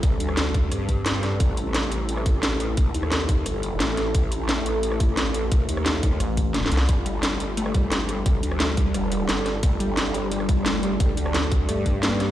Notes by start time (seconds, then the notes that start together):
Already playing: G3 C4 A4
0.03 A1, kick, closed hi-hat
0.20 D2, closed hi-hat
0.29 cross-stick
0.37 snare, closed hi-hat
0.54 kick, closed hi-hat
0.72 G2, cross-stick, closed hi-hat
0.89 kick, closed hi-hat
1.06 snare, closed hi-hat
1.23 cross-stick, snare, closed hi-hat
1.40 A1 A3 E4, kick, closed hi-hat
1.57 closed hi-hat
1.74 snare, closed hi-hat
1.92 closed hi-hat
2.09 closed hi-hat
2.17 cross-stick
2.26 kick, closed hi-hat
2.43 snare, closed hi-hat
2.60 closed hi-hat
2.77 A#1, kick, closed hi-hat
2.94 D#2, closed hi-hat
3.03 cross-stick
3.12 snare, closed hi-hat
3.29 kick, closed hi-hat
3.46 G1, cross-stick, closed hi-hat
3.63 closed hi-hat
3.80 A1, snare, closed hi-hat
3.97 cross-stick, snare, closed hi-hat
4.14 A1 F4, kick, closed hi-hat
4.32 closed hi-hat
4.49 snare, closed hi-hat
4.66 closed hi-hat
4.83 closed hi-hat
4.92 cross-stick
5.00 kick, closed hi-hat
5.17 snare, closed hi-hat
5.34 closed hi-hat
5.52 A#1, kick, closed hi-hat
5.69 D#2, closed hi-hat
5.77 cross-stick
5.86 snare, closed hi-hat
6.03 kick, closed hi-hat
6.20 A1, cross-stick, closed hi-hat
6.37 kick, closed hi-hat
6.54 snare, closed hi-hat
6.66 snare
6.72 C2, closed hi-hat
6.77 snare
6.89 G1 G3 D4 A4, kick, closed hi-hat
7.06 G3, closed hi-hat
7.23 G3, snare, closed hi-hat
7.40 closed hi-hat
7.57 A3, closed hi-hat
7.66 cross-stick
7.74 G3, kick, closed hi-hat
7.92 G3, snare, closed hi-hat
8.09 G3, closed hi-hat
8.26 A1 G3, kick, closed hi-hat
8.43 D2, closed hi-hat
8.52 cross-stick
8.60 A3, snare, closed hi-hat
8.77 G3, kick, closed hi-hat
8.94 F1 G3, cross-stick, closed hi-hat
9.12 G3, closed hi-hat
9.29 G1 G3, snare, closed hi-hat
9.46 cross-stick, snare, closed hi-hat
9.63 G1 A3, kick, closed hi-hat
9.80 G3, closed hi-hat
9.97 G3, snare, closed hi-hat
10.14 G3, closed hi-hat
10.32 G3, closed hi-hat
10.40 cross-stick
10.49 kick, closed hi-hat
10.66 A3, snare, closed hi-hat
10.83 G3, closed hi-hat
11.00 A1 G3, kick, closed hi-hat
11.17 D2 G3, closed hi-hat
11.26 cross-stick
11.34 G3, snare, closed hi-hat
11.52 kick, closed hi-hat
11.69 G2 A3, cross-stick, closed hi-hat
11.86 D4, kick, closed hi-hat
12.03 A#3, snare, closed hi-hat
12.20 cross-stick, snare, closed hi-hat